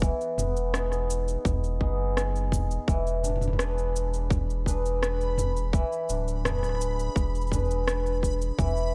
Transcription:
0.00 0.13 E1 medium
0.00 2.88 E3 medium
0.00 0.38 B3 medium
0.00 0.74 D#4 medium
0.00 1.62 F#4 medium
0.00 0.75 G#4 medium
0.00 kick loud
0.21 shaker soft
0.37 1.37 E1 medium
0.37 0.74 B3 medium
0.37 mid tom medium
0.37 shaker medium
0.57 shaker soft
0.74 1.81 B3 medium
0.74 1.81 D#4 medium
0.74 1.82 G#4 medium
0.74 cross-stick medium
0.74 shaker soft
0.92 cross-stick soft
0.92 shaker soft
1.10 shaker medium
1.28 shaker soft
1.45 1.80 E1 medium
1.45 kick loud
1.45 mid tom medium
1.45 shaker soft
1.64 shaker soft
1.81 2.54 F#1 medium
1.81 8.85 B3 medium
1.81 3.30 D#4 medium
1.81 2.16 G#4 medium
1.81 kick medium
2.17 3.60 G#4 medium
2.17 cross-stick medium
2.17 shaker soft
2.36 shaker soft
2.52 2.79 E1 medium
2.52 kick medium
2.52 mid tom medium
2.52 shaker medium
2.71 shaker soft
2.88 5.84 E1 medium
2.88 5.73 E3 medium
2.88 8.95 B5 medium
2.88 kick loud
2.88 shaker soft
3.07 shaker soft
3.24 3.59 D4 medium
3.24 mid tom soft
3.24 shaker medium
3.30 mid tom soft
3.36 mid tom soft
3.41 mid tom soft
3.41 shaker soft
3.48 mid tom medium
3.53 mid tom medium
3.59 4.66 D4 medium
3.59 4.67 G#4 medium
3.59 4.67 B4 medium
3.59 cross-stick medium
3.59 shaker soft
3.78 shaker soft
3.96 shaker medium
4.14 shaker soft
4.30 kick loud
4.30 mid tom medium
4.30 shaker soft
4.50 shaker soft
4.66 6.09 D4 medium
4.66 6.45 G#4 medium
4.66 5.02 B4 medium
4.66 kick medium
4.66 shaker medium
4.86 shaker soft
5.02 6.46 B4 medium
5.02 cross-stick medium
5.02 shaker soft
5.21 shaker soft
5.38 mid tom medium
5.38 shaker medium
5.57 shaker soft
5.73 8.58 E3 medium
5.73 kick loud
5.73 shaker soft
5.92 shaker soft
6.09 7.09 D1 medium
6.09 6.44 D4 medium
6.09 shaker medium
6.28 shaker soft
6.45 7.51 D4 medium
6.45 7.52 G#4 medium
6.45 7.53 B4 medium
6.45 cross-stick medium
6.45 mid tom medium
6.45 shaker soft
6.63 cross-stick soft
6.63 shaker soft
6.69 cross-stick soft
6.75 cross-stick soft
6.81 shaker medium
6.99 shaker soft
7.16 8.52 E1 medium
7.16 kick loud
7.16 shaker soft
7.35 shaker soft
7.41 shaker soft
7.47 shaker soft
7.52 8.95 D4 medium
7.52 8.95 G#4 medium
7.52 7.87 B4 medium
7.52 kick medium
7.52 mid tom medium
7.52 shaker medium
7.65 shaker soft
7.71 shaker soft
7.87 8.95 B4 medium
7.87 cross-stick medium
7.87 shaker soft
8.06 shaker soft
8.23 kick medium
8.23 shaker medium
8.42 shaker soft
8.59 8.95 E1 loud
8.59 8.95 E3 medium
8.59 kick loud
8.59 mid tom medium
8.59 shaker soft
8.77 shaker soft

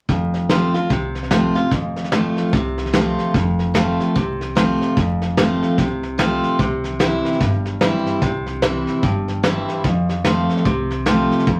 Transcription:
0.09 0.68 F1 medium
0.09 0.87 F2 medium
0.09 kick medium
0.09 snare soft
0.34 snare soft
0.49 0.74 F3 soft
0.49 0.74 A3 soft
0.49 0.74 C4 medium
0.49 0.73 F4 medium
0.49 snare medium
0.49 hi-hat pedal medium
0.74 0.90 C4 soft
0.74 0.90 F4 soft
0.74 snare soft
0.90 1.49 C2 medium
0.90 1.68 C3 medium
0.90 kick medium
0.90 snare soft
1.15 snare soft
1.23 snare soft
1.31 1.55 F3 medium
1.31 1.55 A3 medium
1.31 1.55 C4 medium
1.31 1.54 F4 medium
1.31 snare medium
1.31 hi-hat pedal medium
1.55 1.72 C4 soft
1.55 1.71 F4 medium
1.55 snare soft
1.71 2.30 F1 medium
1.71 2.50 F2 medium
1.71 kick medium
1.71 snare soft
1.96 snare soft
2.04 snare soft
2.12 2.51 F3 medium
2.12 2.52 A3 medium
2.12 2.52 C4 medium
2.12 2.52 F4 medium
2.12 snare medium
2.12 hi-hat pedal medium
2.37 snare soft
2.53 3.12 C2 medium
2.53 3.31 C3 medium
2.53 kick loud
2.53 snare soft
2.78 snare soft
2.86 snare soft
2.93 3.32 F3 medium
2.93 3.33 A3 medium
2.93 3.33 C4 medium
2.93 3.33 F4 medium
2.93 snare medium
2.93 hi-hat pedal medium
3.19 snare soft
3.34 3.93 F1 medium
3.34 4.12 F2 medium
3.34 kick loud
3.34 snare soft
3.59 snare soft
3.74 4.14 F3 soft
3.74 4.14 A3 medium
3.74 4.14 C4 medium
3.74 4.14 F4 medium
3.74 snare medium
3.74 hi-hat pedal medium
4.00 snare soft
4.15 4.74 C2 medium
4.15 4.94 C3 medium
4.15 kick medium
4.15 snare soft
4.41 snare soft
4.55 4.95 F3 medium
4.55 4.95 A3 medium
4.55 4.95 C4 medium
4.55 4.96 F4 medium
4.55 snare medium
4.55 hi-hat pedal medium
4.82 snare soft
4.97 5.56 F1 medium
4.97 5.75 F2 medium
4.97 kick loud
4.97 snare soft
5.22 snare soft
5.37 5.76 F3 medium
5.37 5.77 A3 medium
5.37 5.77 C4 medium
5.37 5.77 F4 medium
5.37 snare medium
5.37 hi-hat pedal medium
5.63 snare soft
5.78 6.37 C2 medium
5.78 6.56 C3 medium
5.78 kick medium
5.78 snare soft
6.03 snare soft
6.18 6.57 F3 medium
6.18 6.58 A3 medium
6.18 6.58 C4 medium
6.18 6.58 F4 medium
6.18 snare loud
6.18 hi-hat pedal medium
6.43 snare soft
6.59 7.18 C2 medium
6.59 7.37 C3 medium
6.59 kick medium
6.59 snare soft
6.84 snare soft
6.99 7.39 E3 medium
6.99 7.39 G3 medium
6.99 7.39 C4 medium
6.99 7.40 E4 medium
6.99 snare medium
6.99 hi-hat pedal medium
7.25 snare soft
7.33 snare soft
7.40 7.99 G1 medium
7.40 8.19 G2 medium
7.40 kick loud
7.40 snare soft
7.65 snare soft
7.81 8.20 E3 medium
7.81 8.21 G3 medium
7.81 8.21 C4 medium
7.81 8.21 E4 medium
7.81 snare medium
7.81 hi-hat pedal medium
8.06 snare soft
8.22 8.81 C2 medium
8.22 9.00 C3 medium
8.22 kick loud
8.22 snare soft
8.46 snare soft
8.62 9.01 E3 soft
8.62 9.02 G3 soft
8.62 9.02 C4 medium
8.62 9.02 E4 medium
8.62 snare medium
8.62 hi-hat pedal medium
8.87 snare soft
9.03 9.62 G1 medium
9.03 9.81 G2 medium
9.03 kick medium
9.03 snare soft
9.28 snare soft
9.43 9.82 E3 medium
9.43 9.83 G3 medium
9.43 9.83 C4 medium
9.43 9.83 E4 medium
9.43 snare loud
9.43 hi-hat pedal medium
9.68 snare soft
9.84 10.43 F2 medium
9.84 10.62 F2 medium
9.84 kick loud
9.84 snare soft
10.09 snare soft
10.24 10.64 F3 soft
10.24 10.64 A3 medium
10.24 10.64 C4 medium
10.24 10.65 F4 medium
10.24 snare medium
10.24 hi-hat pedal medium
10.50 snare soft
10.57 snare soft
10.65 11.24 C2 medium
10.65 11.44 C3 medium
10.65 kick medium
10.65 snare soft
10.90 snare soft
11.06 11.45 F3 medium
11.06 11.46 A3 medium
11.06 11.46 C4 medium
11.06 11.46 F4 medium
11.06 snare medium
11.06 hi-hat pedal medium
11.31 snare soft
11.39 snare soft
11.47 11.60 F2 medium
11.47 kick loud
11.47 snare soft

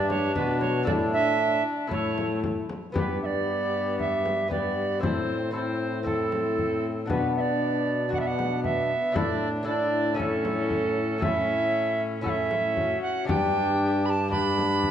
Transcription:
0.00 0.31 G2 medium
0.00 0.35 G2 medium
0.00 0.82 G3 medium
0.00 0.81 D4 medium
0.00 0.85 D4 medium
0.00 0.36 G4 medium
0.00 0.82 D5 soft
0.10 0.35 C#5 loud
0.10 frame drum soft
0.35 0.83 B2 medium
0.35 0.89 B2 medium
0.35 0.88 F#4 medium
0.35 0.60 B4 medium
0.35 frame drum soft
0.61 0.85 C#5 medium
0.61 frame drum soft
0.83 1.59 A2 soft
0.83 1.86 D4 soft
0.83 1.92 D4 medium
0.83 1.86 E4 soft
0.83 1.63 E4 medium
0.83 1.87 A4 soft
0.83 0.92 D5 medium
0.83 frame drum medium
0.87 1.63 A2 medium
1.13 1.63 E5 loud
1.87 2.75 A3 medium
1.87 2.91 E4 soft
1.87 2.92 A4 soft
1.87 2.40 C#5 medium
1.87 frame drum soft
1.91 2.66 A2 soft
1.91 2.66 A2 medium
1.91 2.66 E4 medium
2.18 frame drum soft
2.44 frame drum soft
2.69 frame drum soft
2.92 4.99 G2 soft
2.92 4.45 B3 soft
2.92 4.47 B3 medium
2.92 4.46 G4 soft
2.92 4.47 G4 medium
2.92 4.47 B4 soft
2.92 frame drum medium
2.97 5.00 G2 medium
2.97 3.20 B4 medium
3.22 3.98 D5 medium
3.22 3.27 E5 medium
4.00 4.50 E5 medium
4.00 frame drum soft
4.26 frame drum soft
4.48 4.99 B3 soft
4.48 5.04 B3 medium
4.48 5.00 G4 soft
4.48 5.01 G4 soft
4.48 5.01 B4 soft
4.48 5.01 D5 medium
4.48 frame drum soft
4.99 7.06 A2 soft
4.99 5.50 C4 soft
4.99 5.54 C4 medium
4.99 5.51 E4 soft
4.99 5.53 E4 soft
4.99 5.52 A4 soft
4.99 5.53 C5 medium
4.99 frame drum medium
5.04 7.11 A2 medium
5.51 6.02 C4 soft
5.51 6.03 E4 soft
5.51 6.05 E4 medium
5.51 6.04 A4 soft
5.51 6.05 C5 medium
5.55 6.06 C4 soft
6.03 7.05 C4 soft
6.03 7.08 C4 soft
6.03 7.06 E4 soft
6.03 7.12 E4 medium
6.03 7.06 A4 soft
6.03 6.86 A4 medium
6.03 frame drum soft
6.32 frame drum soft
6.58 frame drum soft
7.06 8.99 B2 medium
7.06 8.11 B3 medium
7.06 8.08 D4 soft
7.06 8.08 F#4 soft
7.06 frame drum medium
7.10 9.12 B2 soft
7.10 8.12 D4 medium
7.10 7.35 B4 medium
7.36 7.42 E5 medium
7.41 8.12 D5 medium
8.09 9.17 B3 medium
8.09 9.10 D4 soft
8.09 9.11 F#4 soft
8.09 frame drum soft
8.13 8.91 D4 medium
8.13 8.19 F#5 medium
8.19 8.28 E5 medium
8.27 8.63 F#5 medium
8.39 frame drum soft
8.64 9.17 E5 medium
8.64 frame drum soft
9.12 12.96 A2 medium
9.12 9.62 D4 soft
9.12 9.66 D4 medium
9.12 9.63 E4 soft
9.12 9.48 E4 soft
9.12 9.65 A4 soft
9.12 9.49 D5 medium
9.12 frame drum medium
9.16 12.97 A2 soft
9.63 10.14 D4 soft
9.63 10.15 E4 soft
9.63 10.16 A4 soft
9.63 10.15 D5 medium
9.67 10.20 D4 medium
9.67 10.15 E4 medium
10.15 11.17 C#4 soft
10.15 11.18 E4 soft
10.15 11.18 A4 soft
10.19 11.22 C#4 medium
10.19 11.20 E4 medium
10.19 11.24 A4 medium
10.19 frame drum soft
10.45 frame drum soft
10.70 frame drum soft
11.18 12.20 C#4 soft
11.18 12.21 E4 soft
11.18 12.22 A4 soft
11.18 frame drum medium
11.22 12.23 C#4 medium
11.22 11.28 F#4 soft
11.22 12.02 E5 medium
11.27 12.24 E4 medium
12.21 13.23 C#4 soft
12.21 13.23 E4 soft
12.21 12.78 E4 medium
12.21 13.24 A4 soft
12.21 12.31 F#5 medium
12.26 13.29 C#4 medium
12.26 13.01 E5 medium
12.26 frame drum soft
12.51 frame drum soft
12.77 13.28 F#4 medium
12.77 frame drum soft
13.02 13.27 F#5 medium
13.25 14.91 G2 soft
13.25 14.91 G2 medium
13.25 14.26 D4 soft
13.25 14.30 D4 medium
13.25 14.27 G4 soft
13.25 14.29 G4 medium
13.25 14.27 D5 soft
13.25 14.07 G5 medium
13.29 frame drum medium
14.05 14.11 B5 medium
14.10 14.30 A5 medium
14.28 14.91 D4 soft
14.28 14.91 D4 medium
14.28 14.91 G4 soft
14.28 14.91 D5 soft
14.28 14.91 B5 loud
14.28 frame drum soft
14.33 14.91 G4 medium
14.58 frame drum soft
14.83 frame drum soft

